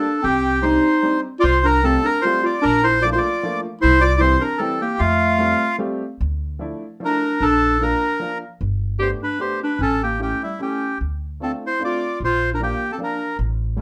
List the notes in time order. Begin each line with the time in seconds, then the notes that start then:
Already playing: D4 A4
0.22 C2 C4 G4
0.62 G3 C4 D4 D#4 G4 C5
1.03 G3 C4 D4 D#4 G4
1.39 F4 D5
1.44 C2 C5
1.64 D4 A#4
1.83 G3 A3 C4 F4 G4 A4
2.03 D4 A#4
2.22 G3 A3 C4 F4 C5
2.26 G4
2.43 F4 D5
2.62 A#1 D4 A#4
2.83 E4 C5
3.02 F3 A3 A#3 D4 F4 D5
3.06 F4
3.11 E4 F4 C5
3.18 D5
3.43 F3 A3 A#3 D4 F4
3.81 C2 E4 C5
4.01 F4 D5
4.17 E3 G3 E4 C5
4.22 C4 E4 G4
4.41 D4 A#4
4.58 E3 G3 C4 E4 G4 A4
4.81 A#3 G4
4.99 F2 A3 F4
5.38 G3 A3 C4 F4 G4
5.78 G3 A3 C4 F4 G4
6.21 D2
6.59 F3 A3 D4 E4
7.00 F3 A3 D4 E4
7.05 A#4
7.40 A#1 D4 A4
7.80 F3 A#3 D4 F4 A#4
8.20 F3 A#3 D4 F4
8.61 G1
8.98 A3 B3 D4 G4 C5
9.22 D4 B4
9.39 A3 B3 D4 G4 C5
9.63 D4 B4
9.79 A1 C#4 A4
10.03 A#3 G4
10.19 A3 C#4 E4 G4
10.43 G3 E4
10.59 A3 C#4 E4 G4
11.01 D2
11.40 A3 C4 D4 F4 A4
11.64 E4 C5
11.80 A3 C4 D4 F4
11.85 F4 D5
12.20 A#1 F4
12.25 C5
12.54 D4 A#4
12.60 F3 A#3 D4 F4 G4
12.92 C4 A4
12.98 F3 A#3 D4 F4
13.03 D4 A#4
13.39 A1
13.77 G3 A3 C#4